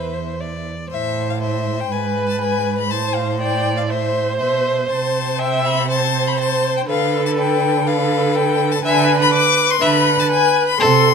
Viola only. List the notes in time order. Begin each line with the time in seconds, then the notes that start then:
Already playing: C5
1.92 B4
2.91 C5
3.41 D5
3.90 C5
5.39 E5
5.88 C5
6.88 A4
7.87 A4
8.85 B4
9.82 B4
10.80 A4